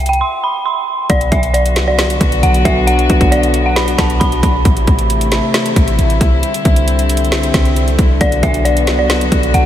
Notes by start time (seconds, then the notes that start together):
Already playing: C2
0.06 G5, closed hi-hat
0.13 closed hi-hat
0.21 C6
0.44 B5
0.66 C6
1.10 B1 D3 F#3 B3 F#4 D5, kick, closed hi-hat
1.21 closed hi-hat
1.32 B1 E5, kick, closed hi-hat
1.43 closed hi-hat
1.54 D5, closed hi-hat
1.66 closed hi-hat
1.76 C2, snare, closed hi-hat
1.88 D5
1.99 snare, closed hi-hat
2.10 closed hi-hat
2.21 B1, kick, closed hi-hat
2.32 closed hi-hat
2.43 B1 F#5, closed hi-hat
2.54 closed hi-hat
2.65 B1 E5, kick, closed hi-hat
2.87 F#5, closed hi-hat
2.99 closed hi-hat
3.10 B1, kick, closed hi-hat
3.21 kick, closed hi-hat
3.32 D5, closed hi-hat
3.43 closed hi-hat
3.54 closed hi-hat
3.66 F#5
3.76 B5, snare, closed hi-hat
3.88 closed hi-hat
3.98 B1 A5, kick, snare, closed hi-hat
4.10 closed hi-hat
4.20 B1 B5, kick, closed hi-hat
4.32 closed hi-hat
4.43 B1, kick, closed hi-hat
4.65 A1 C3 E3 A3 E4, kick, closed hi-hat
4.77 closed hi-hat
4.87 A1, kick, closed hi-hat
4.99 closed hi-hat
5.10 closed hi-hat
5.21 closed hi-hat
5.32 snare, closed hi-hat
5.54 snare, closed hi-hat
5.66 closed hi-hat
5.76 A1, kick, closed hi-hat
5.88 closed hi-hat
5.99 A1, closed hi-hat
6.10 closed hi-hat
6.21 C2, kick, closed hi-hat
6.43 D3 G3 C4, closed hi-hat
6.54 closed hi-hat
6.65 C2, kick, closed hi-hat
6.76 closed hi-hat
6.88 closed hi-hat
6.99 closed hi-hat
7.09 closed hi-hat, open hi-hat
7.17 closed hi-hat
7.24 closed hi-hat
7.32 snare, closed hi-hat
7.43 closed hi-hat
7.54 C2, kick, snare, closed hi-hat
7.65 closed hi-hat
7.76 closed hi-hat
7.88 closed hi-hat
7.99 C2, kick, closed hi-hat
8.21 B1 F#3 B3 F#4 D5, kick, closed hi-hat
8.32 closed hi-hat
8.43 B1 E5, kick, closed hi-hat
8.54 closed hi-hat
8.65 D5, closed hi-hat
8.77 closed hi-hat
8.87 C2, snare, closed hi-hat
8.99 D5
9.10 snare, closed hi-hat
9.21 closed hi-hat
9.32 B1, kick, closed hi-hat
9.43 closed hi-hat
9.54 B1 F#5, closed hi-hat